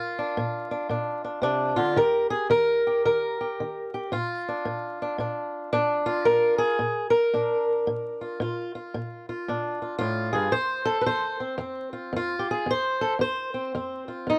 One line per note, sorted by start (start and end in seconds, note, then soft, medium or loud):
0.00 0.33 A#2 medium
0.00 1.75 F4 loud
0.00 0.37 A#4 medium
0.19 0.70 D4 soft
0.37 0.87 A#2 medium
0.71 0.89 D4 soft
0.89 1.40 A#2 medium
0.89 1.23 D4 soft
1.25 1.42 D4 soft
1.42 1.77 C3 medium
1.42 1.97 D4 medium
1.76 1.98 D3 medium
1.76 1.97 F4 medium
1.96 2.47 D#3 medium
1.96 2.85 G4 soft
1.96 2.30 A#4 loud
2.30 2.50 G#4 medium
2.50 3.00 D#3 medium
2.50 3.04 A#4 loud
2.87 3.40 G4 soft
3.05 3.55 D#3 medium
3.05 4.13 A#4 medium
3.41 3.93 G4 soft
3.60 4.09 D#3 medium
3.94 4.11 G4 soft
4.12 4.62 A#2 medium
4.12 6.05 F4 loud
4.48 5.02 D4 soft
4.65 5.15 A#2 medium
5.02 5.20 D4 soft
5.18 5.69 A#2 medium
5.18 5.72 D4 soft
5.73 6.23 A#2 medium
5.73 6.60 D4 medium
6.06 6.80 F4 medium
6.25 6.76 A#2 medium
6.25 6.58 A#4 loud
6.58 7.10 G#4 loud
6.79 7.29 A#2 medium
7.10 10.32 A#4 loud
7.34 7.83 A#2 medium
7.34 8.38 D4 soft
7.87 8.37 A#2 medium
8.21 8.41 F4 soft
8.40 8.90 A#2 medium
8.40 8.75 F4 medium
8.75 9.29 F4 soft
8.94 9.44 A#2 medium
9.29 9.81 F4 soft
9.48 9.97 A#2 medium
9.48 10.53 D4 soft
9.82 9.98 F4 soft
9.98 10.34 A2 medium
9.98 10.52 F4 medium
10.33 10.53 G2 medium
10.33 10.53 G#4 medium
10.52 11.03 F2 medium
10.52 11.01 C5 loud
10.85 11.40 A4 loud
11.01 11.06 B4 medium
11.06 11.56 F2 medium
11.06 11.92 C5 loud
11.40 11.58 C4 soft
11.58 12.09 F2 medium
11.58 12.38 C4 soft
11.93 12.16 F4 soft
12.13 12.63 F2 medium
12.13 12.69 F4 medium
12.39 12.48 G4 medium
12.51 12.69 G#4 medium
12.66 13.16 F2 medium
12.71 13.20 C5 loud
13.01 13.13 A4 medium
13.19 13.69 F2 medium
13.19 14.07 C5 loud
13.54 13.74 C4 soft
13.75 14.23 F2 medium
13.75 14.39 C4 soft
14.08 14.39 F4 soft
14.27 14.39 F2 medium
14.27 14.39 D#4 medium